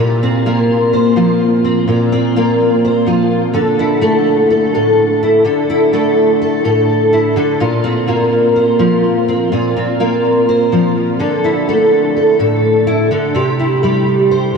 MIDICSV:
0, 0, Header, 1, 2, 480
1, 0, Start_track
1, 0, Key_signature, -1, "minor"
1, 0, Tempo, 477707
1, 1887, Time_signature, 4, 2, 24, 8
1, 14643, End_track
2, 0, Start_track
2, 0, Title_t, "Steel-string acoustic guitar"
2, 0, Program_c, 0, 25
2, 0, Note_on_c, 0, 46, 74
2, 0, Note_on_c, 0, 65, 66
2, 230, Note_on_c, 0, 60, 69
2, 461, Note_on_c, 0, 58, 68
2, 463, Note_off_c, 0, 65, 0
2, 467, Note_on_c, 0, 65, 74
2, 937, Note_on_c, 0, 72, 63
2, 1162, Note_off_c, 0, 65, 0
2, 1168, Note_on_c, 0, 53, 74
2, 1174, Note_on_c, 0, 65, 64
2, 1641, Note_off_c, 0, 60, 0
2, 1653, Note_on_c, 0, 60, 62
2, 1858, Note_off_c, 0, 53, 0
2, 1860, Note_off_c, 0, 65, 0
2, 1861, Note_off_c, 0, 46, 0
2, 1861, Note_off_c, 0, 72, 0
2, 1863, Note_off_c, 0, 58, 0
2, 1884, Note_on_c, 0, 46, 82
2, 1894, Note_on_c, 0, 65, 67
2, 2121, Note_off_c, 0, 60, 0
2, 2133, Note_on_c, 0, 60, 69
2, 2369, Note_off_c, 0, 65, 0
2, 2374, Note_on_c, 0, 58, 76
2, 2380, Note_on_c, 0, 65, 71
2, 2860, Note_on_c, 0, 72, 69
2, 3078, Note_off_c, 0, 65, 0
2, 3079, Note_on_c, 0, 53, 70
2, 3090, Note_on_c, 0, 65, 63
2, 3531, Note_off_c, 0, 53, 0
2, 3532, Note_off_c, 0, 46, 0
2, 3537, Note_off_c, 0, 65, 0
2, 3538, Note_off_c, 0, 58, 0
2, 3542, Note_off_c, 0, 72, 0
2, 3552, Note_on_c, 0, 50, 79
2, 3561, Note_on_c, 0, 69, 75
2, 3566, Note_off_c, 0, 60, 0
2, 3811, Note_on_c, 0, 64, 71
2, 4033, Note_on_c, 0, 57, 75
2, 4036, Note_off_c, 0, 69, 0
2, 4040, Note_on_c, 0, 69, 77
2, 4522, Note_off_c, 0, 69, 0
2, 4526, Note_on_c, 0, 69, 61
2, 4764, Note_on_c, 0, 45, 64
2, 4765, Note_off_c, 0, 69, 0
2, 4769, Note_on_c, 0, 69, 72
2, 5240, Note_off_c, 0, 64, 0
2, 5252, Note_on_c, 0, 64, 65
2, 5447, Note_off_c, 0, 57, 0
2, 5458, Note_off_c, 0, 64, 0
2, 5460, Note_off_c, 0, 50, 0
2, 5466, Note_off_c, 0, 69, 0
2, 5472, Note_on_c, 0, 50, 75
2, 5478, Note_on_c, 0, 69, 70
2, 5482, Note_off_c, 0, 45, 0
2, 5724, Note_on_c, 0, 64, 72
2, 5951, Note_off_c, 0, 69, 0
2, 5958, Note_on_c, 0, 57, 66
2, 5963, Note_on_c, 0, 69, 73
2, 6435, Note_off_c, 0, 69, 0
2, 6447, Note_on_c, 0, 69, 63
2, 6671, Note_off_c, 0, 69, 0
2, 6677, Note_on_c, 0, 45, 68
2, 6683, Note_on_c, 0, 69, 74
2, 7150, Note_off_c, 0, 64, 0
2, 7162, Note_on_c, 0, 64, 69
2, 7371, Note_off_c, 0, 57, 0
2, 7373, Note_off_c, 0, 64, 0
2, 7383, Note_off_c, 0, 50, 0
2, 7394, Note_off_c, 0, 69, 0
2, 7395, Note_on_c, 0, 50, 85
2, 7400, Note_off_c, 0, 45, 0
2, 7406, Note_on_c, 0, 69, 75
2, 7639, Note_off_c, 0, 50, 0
2, 7639, Note_on_c, 0, 46, 84
2, 7644, Note_off_c, 0, 69, 0
2, 7644, Note_on_c, 0, 65, 74
2, 7875, Note_on_c, 0, 60, 64
2, 8114, Note_on_c, 0, 58, 74
2, 8117, Note_off_c, 0, 65, 0
2, 8121, Note_on_c, 0, 65, 65
2, 8599, Note_on_c, 0, 72, 63
2, 8822, Note_off_c, 0, 65, 0
2, 8834, Note_on_c, 0, 53, 74
2, 8837, Note_on_c, 0, 65, 65
2, 9316, Note_off_c, 0, 60, 0
2, 9328, Note_on_c, 0, 60, 57
2, 9530, Note_off_c, 0, 65, 0
2, 9531, Note_off_c, 0, 53, 0
2, 9531, Note_off_c, 0, 58, 0
2, 9533, Note_off_c, 0, 72, 0
2, 9534, Note_off_c, 0, 46, 0
2, 9565, Note_on_c, 0, 46, 80
2, 9576, Note_on_c, 0, 65, 68
2, 9801, Note_off_c, 0, 60, 0
2, 9813, Note_on_c, 0, 60, 64
2, 10040, Note_off_c, 0, 65, 0
2, 10047, Note_on_c, 0, 58, 80
2, 10052, Note_on_c, 0, 65, 72
2, 10538, Note_on_c, 0, 72, 71
2, 10770, Note_off_c, 0, 65, 0
2, 10773, Note_on_c, 0, 53, 67
2, 10782, Note_on_c, 0, 65, 58
2, 11218, Note_off_c, 0, 46, 0
2, 11219, Note_off_c, 0, 58, 0
2, 11221, Note_off_c, 0, 53, 0
2, 11224, Note_off_c, 0, 72, 0
2, 11226, Note_off_c, 0, 65, 0
2, 11248, Note_on_c, 0, 50, 83
2, 11251, Note_off_c, 0, 60, 0
2, 11256, Note_on_c, 0, 69, 64
2, 11498, Note_on_c, 0, 64, 66
2, 11730, Note_off_c, 0, 69, 0
2, 11741, Note_on_c, 0, 57, 67
2, 11745, Note_on_c, 0, 69, 76
2, 12212, Note_off_c, 0, 69, 0
2, 12224, Note_on_c, 0, 69, 63
2, 12445, Note_off_c, 0, 69, 0
2, 12450, Note_on_c, 0, 45, 67
2, 12457, Note_on_c, 0, 69, 77
2, 12919, Note_off_c, 0, 64, 0
2, 12931, Note_on_c, 0, 64, 73
2, 13142, Note_off_c, 0, 64, 0
2, 13148, Note_off_c, 0, 57, 0
2, 13160, Note_off_c, 0, 50, 0
2, 13167, Note_off_c, 0, 69, 0
2, 13170, Note_off_c, 0, 45, 0
2, 13172, Note_on_c, 0, 50, 85
2, 13179, Note_on_c, 0, 69, 69
2, 13410, Note_on_c, 0, 48, 85
2, 13411, Note_off_c, 0, 50, 0
2, 13415, Note_off_c, 0, 69, 0
2, 13420, Note_on_c, 0, 67, 70
2, 13659, Note_on_c, 0, 64, 58
2, 13894, Note_off_c, 0, 67, 0
2, 13896, Note_on_c, 0, 55, 77
2, 13906, Note_on_c, 0, 67, 71
2, 14382, Note_on_c, 0, 72, 69
2, 14606, Note_off_c, 0, 48, 0
2, 14615, Note_off_c, 0, 67, 0
2, 14643, Note_off_c, 0, 55, 0
2, 14643, Note_off_c, 0, 64, 0
2, 14643, Note_off_c, 0, 72, 0
2, 14643, End_track
0, 0, End_of_file